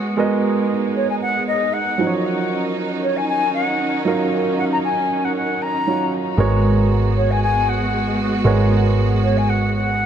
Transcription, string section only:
0.00 1.95 G#3 medium
0.00 1.95 B3 medium
0.00 0.15 F#4 medium
0.17 6.34 D#4 medium
1.98 6.34 D#3 medium
1.98 6.34 C#4 medium
6.38 10.06 G#3 medium
6.38 10.06 B3 medium
6.38 10.06 F#4 medium

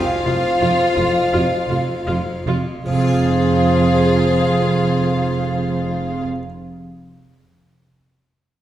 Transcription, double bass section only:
0.26 0.34 F1 medium
0.61 0.69 F1 medium
0.97 1.05 F1 medium
1.33 1.41 F1 medium
1.69 1.77 F1 medium
2.07 2.15 F1 medium
2.47 2.55 F1 medium
2.86 6.21 F1 medium

